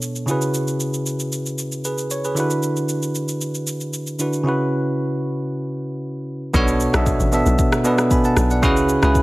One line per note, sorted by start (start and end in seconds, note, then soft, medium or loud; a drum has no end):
0.00 0.23 B2 medium
0.00 0.24 B3 medium
0.00 0.24 D4 medium
0.00 0.25 A4 medium
0.00 0.26 C#5 medium
0.00 shaker loud
0.16 shaker soft
0.26 2.32 C#3 medium
0.26 2.32 C#4 medium
0.26 2.33 E4 medium
0.26 2.33 F#4 medium
0.26 1.82 G#4 medium
0.26 shaker medium
0.31 1.83 B4 medium
0.42 shaker medium
0.54 shaker medium
0.68 shaker soft
0.80 shaker medium
0.94 shaker medium
1.06 shaker medium
1.20 shaker medium
1.32 shaker medium
1.46 shaker medium
1.58 shaker medium
1.72 shaker soft
1.85 2.10 G#4 medium
1.85 2.10 B4 medium
1.85 shaker medium
1.98 shaker medium
2.11 2.24 C#5 medium
2.11 shaker loud
2.24 2.50 G#4 medium
2.24 2.39 B4 medium
2.24 shaker soft
2.35 4.15 D3 medium
2.35 4.15 D4 medium
2.35 4.16 E4 medium
2.35 4.17 F#4 medium
2.35 shaker medium
2.40 4.17 B4 medium
2.50 shaker medium
2.63 shaker medium
2.76 shaker soft
2.89 shaker medium
3.02 shaker medium
3.15 shaker medium
3.28 shaker medium
3.41 shaker medium
3.55 shaker medium
3.67 shaker medium
3.80 shaker soft
3.93 shaker medium
4.07 shaker medium
4.19 4.45 D3 medium
4.19 4.46 D4 soft
4.19 4.45 E4 medium
4.19 4.46 F#4 medium
4.19 4.46 B4 medium
4.19 shaker loud
4.33 shaker soft
4.43 6.49 C#3 medium
4.43 6.50 C#4 medium
4.43 6.50 E4 medium
4.43 6.51 F#4 medium
4.49 6.52 B4 medium
6.54 6.88 B1 loud
6.54 6.85 B2 loud
6.54 6.86 B3 loud
6.54 6.86 D4 loud
6.54 6.86 A4 loud
6.54 6.87 C#5 loud
6.54 kick loud
6.54 shaker medium
6.68 shaker medium
6.80 shaker loud
6.93 7.16 B1 loud
6.93 7.25 B2 medium
6.93 7.25 B3 medium
6.93 7.25 D4 medium
6.93 7.26 A4 medium
6.93 7.26 E5 medium
6.93 cross-stick loud
6.93 shaker soft
7.06 kick loud
7.06 shaker medium
7.20 7.42 A1 medium
7.20 shaker medium
7.32 7.74 B2 medium
7.32 7.75 B3 medium
7.32 7.75 D4 medium
7.32 7.75 A4 medium
7.32 7.76 E5 medium
7.32 shaker medium
7.46 7.57 B1 medium
7.46 shaker medium
7.59 kick loud
7.59 shaker medium
7.72 cross-stick loud
7.72 shaker medium
7.84 8.48 B2 medium
7.84 8.48 B3 medium
7.84 8.48 D4 medium
7.84 8.48 A4 medium
7.84 8.49 B4 loud
7.84 shaker loud
7.98 cross-stick medium
7.98 shaker medium
8.11 8.24 G#5 medium
8.11 8.24 B5 medium
8.11 kick loud
8.11 shaker medium
8.24 8.50 F#5 medium
8.24 8.49 A5 medium
8.24 shaker medium
8.37 8.64 B1 loud
8.37 cross-stick medium
8.37 shaker loud
8.51 8.76 D5 medium
8.51 8.76 F#5 medium
8.51 shaker medium
8.62 8.97 C#2 loud
8.62 8.94 C#3 loud
8.62 8.94 C#4 loud
8.62 8.95 E4 loud
8.62 8.95 F#4 loud
8.62 8.95 G#4 loud
8.62 8.95 B4 loud
8.62 kick loud
8.62 shaker medium
8.77 shaker medium
8.89 shaker loud
9.02 9.22 C#2 loud
9.02 9.22 C#3 medium
9.02 9.22 C#4 medium
9.02 9.22 E4 medium
9.02 9.22 F#4 medium
9.02 9.22 G#4 medium
9.02 9.22 B4 loud
9.02 cross-stick loud
9.02 shaker soft
9.15 kick loud
9.15 shaker medium